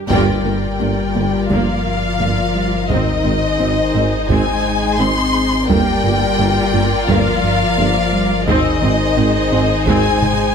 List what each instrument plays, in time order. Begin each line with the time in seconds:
Already playing: viola section G4
0.09 sub bass G1, tuba G1, double bass section G1, cello section G2, analog synth bass G2, french horn section G3, synth arpeggio sound G3, viola section A#3 F4, violin section A#4 D5 G5, taiko
0.44 tuba G1, double bass section G1, cello section G2, analog synth bass G2, synth arpeggio sound A#3, viola section A#3
0.80 tuba G1, double bass section G1, cello section G2, analog synth bass G2, synth arpeggio sound A#3, viola section A#3
1.15 tuba G1, double bass section G1, cello section G2, analog synth bass G2, synth arpeggio sound A#3, viola section A#3
1.50 double bass section G1, tuba G1, analog synth bass G2, cello section G2, french horn section F3, synth arpeggio sound G3, viola section A#3, violin section F5, taiko
1.85 analog synth bass G2
2.19 double bass section G1, tuba G1, analog synth bass G2, cello section G2, synth arpeggio sound A#3, viola section A#3
2.55 analog synth bass G3
2.89 double bass section G#1, sub bass G#1, tuba G#1, analog synth bass G#2, cello section G#2, french horn section D#3, synth arpeggio sound G#3, viola section C4 D#4, violin section C5 D#5, taiko
3.25 double bass section G#1, tuba G#1, analog synth bass G#2, cello section G#2, synth arpeggio sound C4, viola section C4
3.59 tuba G#1, double bass section G#1, cello section G#2, analog synth bass G#2, synth arpeggio sound C4, viola section C4, violin section G#4
3.94 double bass section G#1, tuba G#1, cello section G#2, analog synth bass G#2, synth arpeggio sound C4, viola section C4
4.29 double bass section G#1, tuba G#1, analog synth bass G#2, cello section G#2, french horn section G#3, synth arpeggio sound G#3, viola section C4, violin section G#5, taiko
4.64 analog synth bass G#2
4.99 double bass section G#1, tuba G#1, analog synth bass G#2, cello section G#2, french horn section C4, synth arpeggio sound C4, viola section C4, violin section C6
5.34 analog synth bass G#3
5.68 tuba G1, double bass section G1, sub bass G1, cello section G2, analog synth bass G2, french horn section G3, synth arpeggio sound G3, viola section A#3 F4, violin section A#4 D5 G5, taiko
6.04 double bass section G1, tuba G1, analog synth bass G2, cello section G2, synth arpeggio sound A#3, viola section A#3
6.38 double bass section G1, tuba G1, analog synth bass G2, cello section G2, synth arpeggio sound A#3, viola section A#3
6.73 double bass section G1, tuba G1, analog synth bass G2, cello section G2, synth arpeggio sound A#3, viola section A#3
7.07 double bass section G1, tuba G1, analog synth bass G2, cello section G2, french horn section F3, synth arpeggio sound G3, viola section A#3, violin section F5, taiko
7.43 analog synth bass G2
7.78 double bass section G1, tuba G1, analog synth bass G2, cello section G2, synth arpeggio sound A#3, viola section A#3
8.13 analog synth bass G3
8.47 tuba G#1, double bass section G#1, sub bass G#1, analog synth bass G#2, cello section G#2, french horn section D#3, synth arpeggio sound G#3, viola section C4 D#4, violin section G#4 C5 D#5, taiko
8.82 double bass section G#1, tuba G#1, analog synth bass G#2, cello section G#2, synth arpeggio sound C4, viola section C4
9.17 double bass section G#1, tuba G#1, analog synth bass G#2, cello section G#2, synth arpeggio sound C4, viola section C4
9.52 tuba G#1, double bass section G#1, analog synth bass G#2, cello section G#2, synth arpeggio sound C4, viola section C4
9.86 double bass section G#1, tuba G#1, analog synth bass G#2, cello section G#2, synth arpeggio sound G#3, french horn section G#3, viola section C4, violin section G#5, taiko
10.22 analog synth bass G#2, taiko low-mid